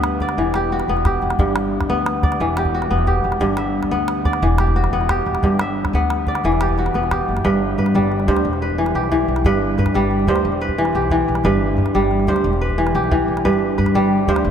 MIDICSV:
0, 0, Header, 1, 4, 480
1, 0, Start_track
1, 0, Key_signature, 1, "major"
1, 0, Tempo, 336511
1, 1987, Time_signature, 12, 3, 24, 8
1, 10144, Tempo, 333519
1, 20786, End_track
2, 0, Start_track
2, 0, Title_t, "Kora"
2, 0, Program_c, 0, 46
2, 0, Note_on_c, 0, 43, 87
2, 0, Note_on_c, 0, 59, 76
2, 0, Note_on_c, 0, 67, 60
2, 0, Note_on_c, 0, 76, 67
2, 307, Note_on_c, 0, 74, 66
2, 544, Note_on_c, 0, 52, 69
2, 616, Note_off_c, 0, 43, 0
2, 633, Note_off_c, 0, 67, 0
2, 789, Note_on_c, 0, 67, 65
2, 819, Note_off_c, 0, 76, 0
2, 1030, Note_on_c, 0, 66, 60
2, 1269, Note_off_c, 0, 59, 0
2, 1274, Note_on_c, 0, 59, 71
2, 1508, Note_off_c, 0, 67, 0
2, 1514, Note_on_c, 0, 67, 67
2, 1888, Note_off_c, 0, 74, 0
2, 1988, Note_on_c, 0, 43, 80
2, 2059, Note_off_c, 0, 52, 0
2, 2073, Note_off_c, 0, 66, 0
2, 2698, Note_off_c, 0, 59, 0
2, 2704, Note_on_c, 0, 59, 85
2, 3185, Note_on_c, 0, 74, 62
2, 3433, Note_on_c, 0, 52, 69
2, 3501, Note_off_c, 0, 43, 0
2, 3528, Note_off_c, 0, 67, 0
2, 3679, Note_on_c, 0, 67, 62
2, 3916, Note_on_c, 0, 66, 61
2, 4139, Note_off_c, 0, 59, 0
2, 4144, Note_on_c, 0, 59, 66
2, 4377, Note_off_c, 0, 67, 0
2, 4382, Note_on_c, 0, 67, 61
2, 4766, Note_off_c, 0, 74, 0
2, 4861, Note_on_c, 0, 43, 86
2, 4943, Note_off_c, 0, 52, 0
2, 4946, Note_off_c, 0, 66, 0
2, 5106, Note_on_c, 0, 76, 59
2, 5577, Note_off_c, 0, 59, 0
2, 5583, Note_on_c, 0, 59, 76
2, 6066, Note_on_c, 0, 74, 70
2, 6315, Note_on_c, 0, 52, 68
2, 6383, Note_off_c, 0, 43, 0
2, 6397, Note_off_c, 0, 67, 0
2, 6556, Note_on_c, 0, 67, 59
2, 6581, Note_off_c, 0, 76, 0
2, 6790, Note_on_c, 0, 66, 63
2, 7025, Note_off_c, 0, 59, 0
2, 7031, Note_on_c, 0, 59, 70
2, 7274, Note_off_c, 0, 67, 0
2, 7279, Note_on_c, 0, 67, 64
2, 7647, Note_off_c, 0, 74, 0
2, 7754, Note_on_c, 0, 43, 75
2, 7823, Note_off_c, 0, 52, 0
2, 7839, Note_off_c, 0, 66, 0
2, 8003, Note_on_c, 0, 76, 67
2, 8478, Note_off_c, 0, 59, 0
2, 8484, Note_on_c, 0, 59, 78
2, 8959, Note_on_c, 0, 74, 64
2, 9198, Note_on_c, 0, 52, 78
2, 9259, Note_off_c, 0, 43, 0
2, 9294, Note_off_c, 0, 67, 0
2, 9438, Note_on_c, 0, 67, 60
2, 9477, Note_off_c, 0, 76, 0
2, 9678, Note_on_c, 0, 66, 54
2, 9908, Note_off_c, 0, 59, 0
2, 9914, Note_on_c, 0, 59, 68
2, 10145, Note_off_c, 0, 67, 0
2, 10151, Note_on_c, 0, 67, 55
2, 10543, Note_off_c, 0, 74, 0
2, 10625, Note_on_c, 0, 43, 85
2, 10627, Note_on_c, 0, 71, 71
2, 10698, Note_off_c, 0, 52, 0
2, 10711, Note_off_c, 0, 66, 0
2, 11108, Note_off_c, 0, 71, 0
2, 11114, Note_on_c, 0, 71, 58
2, 11354, Note_on_c, 0, 55, 74
2, 11811, Note_off_c, 0, 43, 0
2, 11827, Note_on_c, 0, 43, 85
2, 11827, Note_on_c, 0, 72, 72
2, 11914, Note_off_c, 0, 59, 0
2, 11914, Note_off_c, 0, 71, 0
2, 12141, Note_off_c, 0, 43, 0
2, 12141, Note_off_c, 0, 55, 0
2, 12183, Note_off_c, 0, 67, 0
2, 12315, Note_on_c, 0, 71, 67
2, 12402, Note_off_c, 0, 72, 0
2, 12550, Note_on_c, 0, 52, 72
2, 12794, Note_on_c, 0, 67, 60
2, 13011, Note_off_c, 0, 52, 0
2, 13029, Note_on_c, 0, 52, 77
2, 13515, Note_off_c, 0, 71, 0
2, 13520, Note_on_c, 0, 43, 91
2, 13521, Note_on_c, 0, 71, 83
2, 13581, Note_off_c, 0, 52, 0
2, 13989, Note_off_c, 0, 71, 0
2, 13994, Note_on_c, 0, 71, 66
2, 14233, Note_on_c, 0, 55, 81
2, 14693, Note_off_c, 0, 43, 0
2, 14709, Note_on_c, 0, 43, 86
2, 14711, Note_on_c, 0, 72, 69
2, 14798, Note_off_c, 0, 71, 0
2, 14826, Note_off_c, 0, 67, 0
2, 15020, Note_off_c, 0, 43, 0
2, 15020, Note_off_c, 0, 55, 0
2, 15185, Note_on_c, 0, 71, 72
2, 15272, Note_off_c, 0, 72, 0
2, 15429, Note_on_c, 0, 52, 74
2, 15671, Note_on_c, 0, 67, 60
2, 15888, Note_off_c, 0, 52, 0
2, 15905, Note_on_c, 0, 52, 81
2, 16382, Note_off_c, 0, 71, 0
2, 16383, Note_on_c, 0, 43, 89
2, 16388, Note_on_c, 0, 71, 73
2, 16458, Note_off_c, 0, 52, 0
2, 17104, Note_on_c, 0, 55, 86
2, 17569, Note_off_c, 0, 43, 0
2, 17585, Note_on_c, 0, 43, 74
2, 17592, Note_on_c, 0, 72, 76
2, 17678, Note_off_c, 0, 71, 0
2, 17703, Note_off_c, 0, 67, 0
2, 17895, Note_off_c, 0, 43, 0
2, 17895, Note_off_c, 0, 55, 0
2, 18063, Note_on_c, 0, 71, 69
2, 18150, Note_off_c, 0, 72, 0
2, 18302, Note_on_c, 0, 52, 76
2, 18549, Note_on_c, 0, 67, 61
2, 18766, Note_off_c, 0, 52, 0
2, 18783, Note_on_c, 0, 52, 78
2, 19259, Note_off_c, 0, 71, 0
2, 19265, Note_on_c, 0, 71, 72
2, 19266, Note_on_c, 0, 43, 87
2, 19334, Note_off_c, 0, 52, 0
2, 19735, Note_off_c, 0, 71, 0
2, 19741, Note_on_c, 0, 71, 69
2, 19989, Note_on_c, 0, 55, 93
2, 20453, Note_off_c, 0, 43, 0
2, 20469, Note_on_c, 0, 43, 90
2, 20472, Note_on_c, 0, 72, 66
2, 20558, Note_off_c, 0, 71, 0
2, 20581, Note_off_c, 0, 67, 0
2, 20774, Note_off_c, 0, 43, 0
2, 20774, Note_off_c, 0, 55, 0
2, 20786, Note_off_c, 0, 72, 0
2, 20786, End_track
3, 0, Start_track
3, 0, Title_t, "Upright bass"
3, 0, Program_c, 1, 32
3, 0, Note_on_c, 1, 38, 92
3, 492, Note_off_c, 1, 38, 0
3, 533, Note_on_c, 1, 28, 84
3, 1211, Note_off_c, 1, 28, 0
3, 1258, Note_on_c, 1, 28, 79
3, 1710, Note_off_c, 1, 28, 0
3, 1744, Note_on_c, 1, 28, 76
3, 1969, Note_off_c, 1, 28, 0
3, 1982, Note_on_c, 1, 31, 75
3, 2657, Note_off_c, 1, 31, 0
3, 2701, Note_on_c, 1, 38, 86
3, 3377, Note_off_c, 1, 38, 0
3, 3424, Note_on_c, 1, 28, 94
3, 4099, Note_off_c, 1, 28, 0
3, 4147, Note_on_c, 1, 28, 89
3, 4597, Note_off_c, 1, 28, 0
3, 4629, Note_on_c, 1, 28, 80
3, 4854, Note_off_c, 1, 28, 0
3, 4865, Note_on_c, 1, 31, 75
3, 5540, Note_off_c, 1, 31, 0
3, 5582, Note_on_c, 1, 38, 86
3, 6258, Note_off_c, 1, 38, 0
3, 6310, Note_on_c, 1, 28, 108
3, 6982, Note_off_c, 1, 28, 0
3, 7027, Note_on_c, 1, 28, 83
3, 7476, Note_off_c, 1, 28, 0
3, 7507, Note_on_c, 1, 28, 80
3, 7729, Note_off_c, 1, 28, 0
3, 7738, Note_on_c, 1, 31, 79
3, 8414, Note_off_c, 1, 31, 0
3, 8463, Note_on_c, 1, 38, 92
3, 9135, Note_off_c, 1, 38, 0
3, 9188, Note_on_c, 1, 28, 91
3, 9857, Note_off_c, 1, 28, 0
3, 9905, Note_on_c, 1, 28, 82
3, 10352, Note_off_c, 1, 28, 0
3, 10391, Note_on_c, 1, 30, 71
3, 10613, Note_off_c, 1, 30, 0
3, 10623, Note_on_c, 1, 31, 89
3, 11073, Note_off_c, 1, 31, 0
3, 11106, Note_on_c, 1, 43, 83
3, 11331, Note_off_c, 1, 43, 0
3, 11344, Note_on_c, 1, 31, 98
3, 11794, Note_off_c, 1, 31, 0
3, 11823, Note_on_c, 1, 38, 98
3, 12066, Note_on_c, 1, 28, 94
3, 12088, Note_off_c, 1, 38, 0
3, 12739, Note_off_c, 1, 28, 0
3, 12787, Note_on_c, 1, 35, 87
3, 13235, Note_off_c, 1, 35, 0
3, 13268, Note_on_c, 1, 35, 86
3, 13492, Note_off_c, 1, 35, 0
3, 13510, Note_on_c, 1, 31, 86
3, 13957, Note_off_c, 1, 31, 0
3, 13986, Note_on_c, 1, 43, 90
3, 14211, Note_off_c, 1, 43, 0
3, 14222, Note_on_c, 1, 31, 94
3, 14672, Note_off_c, 1, 31, 0
3, 14698, Note_on_c, 1, 38, 92
3, 14945, Note_on_c, 1, 28, 94
3, 14966, Note_off_c, 1, 38, 0
3, 15617, Note_off_c, 1, 28, 0
3, 15662, Note_on_c, 1, 35, 91
3, 16111, Note_off_c, 1, 35, 0
3, 16147, Note_on_c, 1, 35, 83
3, 16370, Note_off_c, 1, 35, 0
3, 16380, Note_on_c, 1, 31, 98
3, 16830, Note_off_c, 1, 31, 0
3, 16861, Note_on_c, 1, 43, 79
3, 17086, Note_off_c, 1, 43, 0
3, 17101, Note_on_c, 1, 31, 91
3, 17549, Note_off_c, 1, 31, 0
3, 17579, Note_on_c, 1, 38, 93
3, 17816, Note_on_c, 1, 28, 99
3, 17838, Note_off_c, 1, 38, 0
3, 18490, Note_off_c, 1, 28, 0
3, 18541, Note_on_c, 1, 35, 104
3, 18989, Note_off_c, 1, 35, 0
3, 19020, Note_on_c, 1, 35, 79
3, 19244, Note_off_c, 1, 35, 0
3, 19262, Note_on_c, 1, 31, 80
3, 19709, Note_off_c, 1, 31, 0
3, 19748, Note_on_c, 1, 43, 96
3, 19969, Note_off_c, 1, 43, 0
3, 19982, Note_on_c, 1, 31, 84
3, 20429, Note_off_c, 1, 31, 0
3, 20462, Note_on_c, 1, 38, 86
3, 20700, Note_on_c, 1, 28, 90
3, 20721, Note_off_c, 1, 38, 0
3, 20786, Note_off_c, 1, 28, 0
3, 20786, End_track
4, 0, Start_track
4, 0, Title_t, "Calabash"
4, 51, Note_on_c, 9, 38, 63
4, 193, Note_off_c, 9, 38, 0
4, 291, Note_on_c, 9, 36, 56
4, 291, Note_on_c, 9, 38, 19
4, 410, Note_off_c, 9, 38, 0
4, 410, Note_on_c, 9, 38, 45
4, 434, Note_off_c, 9, 36, 0
4, 553, Note_off_c, 9, 38, 0
4, 769, Note_on_c, 9, 38, 60
4, 911, Note_off_c, 9, 38, 0
4, 1135, Note_on_c, 9, 38, 46
4, 1278, Note_off_c, 9, 38, 0
4, 1380, Note_on_c, 9, 38, 20
4, 1499, Note_off_c, 9, 38, 0
4, 1499, Note_on_c, 9, 36, 65
4, 1499, Note_on_c, 9, 38, 58
4, 1642, Note_off_c, 9, 36, 0
4, 1642, Note_off_c, 9, 38, 0
4, 1738, Note_on_c, 9, 38, 20
4, 1861, Note_off_c, 9, 38, 0
4, 1861, Note_on_c, 9, 38, 53
4, 1980, Note_on_c, 9, 36, 69
4, 2003, Note_off_c, 9, 38, 0
4, 2122, Note_off_c, 9, 36, 0
4, 2219, Note_on_c, 9, 38, 65
4, 2362, Note_off_c, 9, 38, 0
4, 2575, Note_on_c, 9, 36, 52
4, 2575, Note_on_c, 9, 38, 50
4, 2718, Note_off_c, 9, 36, 0
4, 2718, Note_off_c, 9, 38, 0
4, 2944, Note_on_c, 9, 38, 63
4, 3086, Note_off_c, 9, 38, 0
4, 3184, Note_on_c, 9, 36, 70
4, 3184, Note_on_c, 9, 38, 18
4, 3308, Note_off_c, 9, 38, 0
4, 3308, Note_on_c, 9, 38, 52
4, 3326, Note_off_c, 9, 36, 0
4, 3450, Note_off_c, 9, 38, 0
4, 3664, Note_on_c, 9, 38, 64
4, 3780, Note_on_c, 9, 36, 44
4, 3807, Note_off_c, 9, 38, 0
4, 3923, Note_off_c, 9, 36, 0
4, 4022, Note_on_c, 9, 38, 41
4, 4165, Note_off_c, 9, 38, 0
4, 4262, Note_on_c, 9, 38, 18
4, 4378, Note_on_c, 9, 36, 60
4, 4404, Note_off_c, 9, 38, 0
4, 4521, Note_off_c, 9, 36, 0
4, 4623, Note_on_c, 9, 38, 21
4, 4736, Note_off_c, 9, 38, 0
4, 4736, Note_on_c, 9, 38, 45
4, 4853, Note_on_c, 9, 36, 65
4, 4879, Note_off_c, 9, 38, 0
4, 4996, Note_off_c, 9, 36, 0
4, 5091, Note_on_c, 9, 38, 63
4, 5233, Note_off_c, 9, 38, 0
4, 5457, Note_on_c, 9, 36, 51
4, 5457, Note_on_c, 9, 38, 49
4, 5600, Note_off_c, 9, 36, 0
4, 5600, Note_off_c, 9, 38, 0
4, 5819, Note_on_c, 9, 38, 68
4, 5962, Note_off_c, 9, 38, 0
4, 6065, Note_on_c, 9, 36, 62
4, 6065, Note_on_c, 9, 38, 18
4, 6180, Note_off_c, 9, 38, 0
4, 6180, Note_on_c, 9, 38, 52
4, 6208, Note_off_c, 9, 36, 0
4, 6323, Note_off_c, 9, 38, 0
4, 6538, Note_on_c, 9, 38, 62
4, 6663, Note_on_c, 9, 36, 51
4, 6681, Note_off_c, 9, 38, 0
4, 6806, Note_off_c, 9, 36, 0
4, 6901, Note_on_c, 9, 38, 43
4, 7044, Note_off_c, 9, 38, 0
4, 7148, Note_on_c, 9, 38, 21
4, 7265, Note_off_c, 9, 38, 0
4, 7265, Note_on_c, 9, 36, 65
4, 7265, Note_on_c, 9, 38, 64
4, 7407, Note_off_c, 9, 36, 0
4, 7407, Note_off_c, 9, 38, 0
4, 7502, Note_on_c, 9, 38, 19
4, 7626, Note_off_c, 9, 38, 0
4, 7626, Note_on_c, 9, 38, 51
4, 7744, Note_off_c, 9, 38, 0
4, 7744, Note_on_c, 9, 36, 64
4, 7744, Note_on_c, 9, 38, 22
4, 7886, Note_off_c, 9, 36, 0
4, 7886, Note_off_c, 9, 38, 0
4, 7980, Note_on_c, 9, 38, 67
4, 8123, Note_off_c, 9, 38, 0
4, 8340, Note_on_c, 9, 36, 47
4, 8340, Note_on_c, 9, 38, 57
4, 8483, Note_off_c, 9, 36, 0
4, 8483, Note_off_c, 9, 38, 0
4, 8705, Note_on_c, 9, 38, 65
4, 8848, Note_off_c, 9, 38, 0
4, 8940, Note_on_c, 9, 36, 68
4, 9061, Note_on_c, 9, 38, 53
4, 9082, Note_off_c, 9, 36, 0
4, 9181, Note_off_c, 9, 38, 0
4, 9181, Note_on_c, 9, 38, 19
4, 9302, Note_off_c, 9, 38, 0
4, 9302, Note_on_c, 9, 38, 19
4, 9424, Note_off_c, 9, 38, 0
4, 9424, Note_on_c, 9, 38, 65
4, 9540, Note_on_c, 9, 36, 48
4, 9567, Note_off_c, 9, 38, 0
4, 9667, Note_on_c, 9, 38, 20
4, 9683, Note_off_c, 9, 36, 0
4, 9786, Note_off_c, 9, 38, 0
4, 9786, Note_on_c, 9, 38, 46
4, 9905, Note_off_c, 9, 38, 0
4, 9905, Note_on_c, 9, 38, 22
4, 10034, Note_off_c, 9, 38, 0
4, 10034, Note_on_c, 9, 38, 20
4, 10147, Note_off_c, 9, 38, 0
4, 10147, Note_on_c, 9, 36, 63
4, 10147, Note_on_c, 9, 38, 63
4, 10291, Note_off_c, 9, 36, 0
4, 10291, Note_off_c, 9, 38, 0
4, 10510, Note_on_c, 9, 38, 47
4, 10629, Note_off_c, 9, 38, 0
4, 10629, Note_on_c, 9, 36, 61
4, 10629, Note_on_c, 9, 38, 19
4, 10773, Note_off_c, 9, 36, 0
4, 10773, Note_off_c, 9, 38, 0
4, 11106, Note_on_c, 9, 38, 20
4, 11223, Note_off_c, 9, 38, 0
4, 11223, Note_on_c, 9, 38, 44
4, 11350, Note_off_c, 9, 38, 0
4, 11350, Note_on_c, 9, 38, 20
4, 11470, Note_off_c, 9, 38, 0
4, 11470, Note_on_c, 9, 38, 18
4, 11591, Note_off_c, 9, 38, 0
4, 11591, Note_on_c, 9, 38, 20
4, 11705, Note_off_c, 9, 38, 0
4, 11705, Note_on_c, 9, 38, 20
4, 11824, Note_on_c, 9, 36, 61
4, 11849, Note_off_c, 9, 38, 0
4, 11948, Note_on_c, 9, 38, 48
4, 11967, Note_off_c, 9, 36, 0
4, 12092, Note_off_c, 9, 38, 0
4, 12189, Note_on_c, 9, 38, 20
4, 12312, Note_off_c, 9, 38, 0
4, 12312, Note_on_c, 9, 38, 18
4, 12428, Note_on_c, 9, 36, 42
4, 12456, Note_off_c, 9, 38, 0
4, 12572, Note_off_c, 9, 36, 0
4, 12664, Note_on_c, 9, 38, 41
4, 12792, Note_off_c, 9, 38, 0
4, 12792, Note_on_c, 9, 38, 19
4, 12912, Note_off_c, 9, 38, 0
4, 12912, Note_on_c, 9, 38, 20
4, 13028, Note_on_c, 9, 36, 62
4, 13056, Note_off_c, 9, 38, 0
4, 13172, Note_off_c, 9, 36, 0
4, 13383, Note_on_c, 9, 38, 51
4, 13503, Note_off_c, 9, 38, 0
4, 13503, Note_on_c, 9, 36, 67
4, 13503, Note_on_c, 9, 38, 22
4, 13647, Note_off_c, 9, 36, 0
4, 13647, Note_off_c, 9, 38, 0
4, 13982, Note_on_c, 9, 38, 20
4, 14097, Note_off_c, 9, 38, 0
4, 14097, Note_on_c, 9, 36, 50
4, 14097, Note_on_c, 9, 38, 52
4, 14219, Note_off_c, 9, 38, 0
4, 14219, Note_on_c, 9, 38, 20
4, 14241, Note_off_c, 9, 36, 0
4, 14338, Note_off_c, 9, 38, 0
4, 14338, Note_on_c, 9, 38, 18
4, 14460, Note_off_c, 9, 38, 0
4, 14460, Note_on_c, 9, 38, 19
4, 14581, Note_off_c, 9, 38, 0
4, 14581, Note_on_c, 9, 38, 19
4, 14694, Note_on_c, 9, 36, 55
4, 14725, Note_off_c, 9, 38, 0
4, 14813, Note_on_c, 9, 38, 50
4, 14838, Note_off_c, 9, 36, 0
4, 14957, Note_off_c, 9, 38, 0
4, 15054, Note_on_c, 9, 38, 17
4, 15178, Note_off_c, 9, 38, 0
4, 15178, Note_on_c, 9, 38, 18
4, 15290, Note_on_c, 9, 36, 38
4, 15322, Note_off_c, 9, 38, 0
4, 15433, Note_off_c, 9, 36, 0
4, 15527, Note_on_c, 9, 38, 36
4, 15644, Note_off_c, 9, 38, 0
4, 15644, Note_on_c, 9, 38, 17
4, 15768, Note_off_c, 9, 38, 0
4, 15768, Note_on_c, 9, 38, 16
4, 15888, Note_on_c, 9, 36, 52
4, 15911, Note_off_c, 9, 38, 0
4, 16032, Note_off_c, 9, 36, 0
4, 16248, Note_on_c, 9, 38, 45
4, 16370, Note_off_c, 9, 38, 0
4, 16370, Note_on_c, 9, 36, 51
4, 16370, Note_on_c, 9, 38, 18
4, 16514, Note_off_c, 9, 36, 0
4, 16514, Note_off_c, 9, 38, 0
4, 16848, Note_on_c, 9, 38, 17
4, 16974, Note_off_c, 9, 38, 0
4, 16974, Note_on_c, 9, 36, 45
4, 16974, Note_on_c, 9, 38, 42
4, 17098, Note_off_c, 9, 38, 0
4, 17098, Note_on_c, 9, 38, 16
4, 17117, Note_off_c, 9, 36, 0
4, 17215, Note_off_c, 9, 38, 0
4, 17215, Note_on_c, 9, 38, 17
4, 17339, Note_off_c, 9, 38, 0
4, 17339, Note_on_c, 9, 38, 18
4, 17463, Note_off_c, 9, 38, 0
4, 17463, Note_on_c, 9, 38, 17
4, 17573, Note_on_c, 9, 36, 60
4, 17607, Note_off_c, 9, 38, 0
4, 17697, Note_on_c, 9, 38, 42
4, 17717, Note_off_c, 9, 36, 0
4, 17841, Note_off_c, 9, 38, 0
4, 17945, Note_on_c, 9, 38, 18
4, 18061, Note_off_c, 9, 38, 0
4, 18061, Note_on_c, 9, 38, 17
4, 18183, Note_on_c, 9, 36, 46
4, 18205, Note_off_c, 9, 38, 0
4, 18327, Note_off_c, 9, 36, 0
4, 18426, Note_on_c, 9, 38, 42
4, 18546, Note_off_c, 9, 38, 0
4, 18546, Note_on_c, 9, 38, 17
4, 18673, Note_off_c, 9, 38, 0
4, 18673, Note_on_c, 9, 38, 16
4, 18785, Note_on_c, 9, 36, 56
4, 18817, Note_off_c, 9, 38, 0
4, 18929, Note_off_c, 9, 36, 0
4, 19151, Note_on_c, 9, 38, 49
4, 19267, Note_on_c, 9, 36, 62
4, 19295, Note_off_c, 9, 38, 0
4, 19388, Note_on_c, 9, 38, 18
4, 19411, Note_off_c, 9, 36, 0
4, 19532, Note_off_c, 9, 38, 0
4, 19741, Note_on_c, 9, 38, 21
4, 19860, Note_off_c, 9, 38, 0
4, 19860, Note_on_c, 9, 36, 53
4, 19860, Note_on_c, 9, 38, 47
4, 19980, Note_off_c, 9, 38, 0
4, 19980, Note_on_c, 9, 38, 21
4, 20004, Note_off_c, 9, 36, 0
4, 20124, Note_off_c, 9, 38, 0
4, 20458, Note_on_c, 9, 36, 60
4, 20579, Note_on_c, 9, 38, 54
4, 20602, Note_off_c, 9, 36, 0
4, 20698, Note_off_c, 9, 38, 0
4, 20698, Note_on_c, 9, 38, 22
4, 20786, Note_off_c, 9, 38, 0
4, 20786, End_track
0, 0, End_of_file